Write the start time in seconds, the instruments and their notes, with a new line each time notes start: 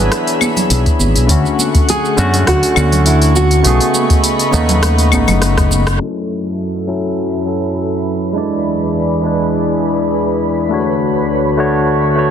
Already playing: tine electric piano E3 B3 D4 G#4 C#5, analog synth pad G#4 E5 B5, nylon-string guitar B4
0.12 cross-stick, open hi-hat, shaker
0.27 open hi-hat, shaker
0.41 high conga, claves, shaker
0.56 open hi-hat, low conga, shaker
0.70 fingered electric bass B1, open hi-hat, shaker
0.86 kick, open hi-hat, shaker
0.99 fingered electric bass G#1, high conga, shaker
1.16 fingered electric bass B1, open hi-hat, shaker
1.26 fingered electric bass D2, tine electric piano D3 A3 C#4, analog synth pad A3 F#5 C#6, kick, open hi-hat, shaker
1.31 tine electric piano F#4
1.46 shaker
1.59 high conga, shaker
1.75 kick, open hi-hat, shaker
1.89 nylon-string guitar G#4, open hi-hat, shaker
2.05 shaker
2.17 fingered electric bass F#2, tine electric piano D3 A3 C#4 F#4, high conga, shaker
2.34 open hi-hat, low conga, shaker
2.47 fingered electric bass D2, nylon-string guitar F#4, kick, cross-stick, open hi-hat, shaker
2.63 open hi-hat, shaker
2.75 fingered electric bass D2, tine electric piano D3 A3 C#4 F#4, high conga, claves, shaker
2.92 open hi-hat, low conga, shaker
3.06 nylon-string guitar E4, open hi-hat, shaker
3.22 open hi-hat, shaker
3.35 nylon-string guitar F#4, high conga, shaker
3.51 open hi-hat, shaker
3.62 fingered electric bass B1, tine electric piano C#3 A3 B3, analog synth pad D#5 B5, open hi-hat, shaker
3.67 tine electric piano G#4
3.80 open hi-hat, shaker
3.94 high conga, shaker
4.10 kick, open hi-hat, shaker
4.24 open hi-hat, shaker
4.39 open hi-hat, shaker
4.51 fingered electric bass D#2, tine electric piano C#3 A3 B3 D#4, high conga, shaker
4.69 open hi-hat, low conga, shaker
4.83 cross-stick, open hi-hat, shaker
4.98 open hi-hat, shaker
5.10 fingered electric bass A1, tine electric piano C#3 A3 B3, kick, high conga, claves, shaker
5.15 tine electric piano D#4
5.28 fingered electric bass F#1, open hi-hat, low conga, claves, shaker
5.42 cross-stick, open hi-hat, shaker
5.57 kick, cross-stick, open hi-hat, shaker
5.71 high conga, shaker
5.87 cross-stick, open hi-hat, shaker
5.98 analog synth pad F#2 F#3 A4 E5, tine electric piano F#3 C#4 E4, synth texture B4 B5
6.03 tine electric piano A4
6.87 tine electric piano F#3 C#4 E4 A4
7.46 tine electric piano F#3 C#4 E4 A4
8.33 analog synth pad E2 E3 G#4 D5, tine electric piano G#3 D4 E4
8.38 tine electric piano D5
9.21 tine electric piano G#3 D4 E4
9.26 tine electric piano B4
10.69 analog synth pad D2 D3 F#4 C#5, tine electric piano A3 D4 F#4
10.74 tine electric piano C#5
11.57 tine electric piano A3 D4 F#4 C#5
12.16 tine electric piano A3 D4 F#4 C#5